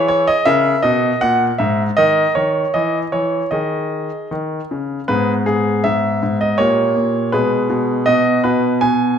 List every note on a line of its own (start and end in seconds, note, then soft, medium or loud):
0.00 0.26 E3 medium
0.00 0.43 G#4 soft
0.08 0.28 C#5 medium
0.28 0.47 D#5 medium
0.45 0.73 C#3 medium
0.45 1.92 A#4 soft
0.45 0.79 E5 medium
0.83 1.11 B2 medium
0.83 1.20 D#5 medium
1.21 1.49 A#2 medium
1.21 1.44 F#5 medium
1.58 1.87 G#2 medium
1.58 1.81 E5 medium
1.97 2.25 D#3 medium
1.97 2.70 A#4 soft
1.97 2.31 D#5 medium
2.35 2.64 D#3 medium
2.35 2.74 C#5 medium
2.74 3.02 E3 soft
2.74 2.97 D#5 medium
3.12 3.41 E3 soft
3.12 3.48 C#5 medium
3.51 4.08 D#3 soft
3.51 4.27 G#4 soft
3.51 4.30 D#5 medium
4.31 4.59 D#3 soft
4.71 4.98 C#3 soft
5.08 5.45 G#2 medium
5.08 6.55 B3 soft
5.08 5.45 G#4 soft
5.08 5.31 B4 medium
5.46 5.83 G#2 soft
5.46 5.84 G#4 medium
5.84 6.21 G#2 soft
5.84 6.36 E5 medium
6.23 6.58 G#2 soft
6.41 6.59 D#5 medium
6.58 6.95 A#2 soft
6.58 7.29 A#3 soft
6.58 7.29 G4 soft
6.58 7.33 C#5 medium
6.96 7.32 A#2 soft
7.32 7.68 B2 soft
7.32 8.04 G#3 soft
7.32 8.03 G#4 soft
7.32 8.03 B4 medium
7.70 8.06 B2 soft
8.06 8.43 B2 soft
8.06 9.19 B3 soft
8.06 9.19 F#4 soft
8.06 8.40 D#5 medium
8.44 8.81 B2 soft
8.44 8.82 B4 medium
8.81 9.17 B2 soft
8.81 9.19 G#5 medium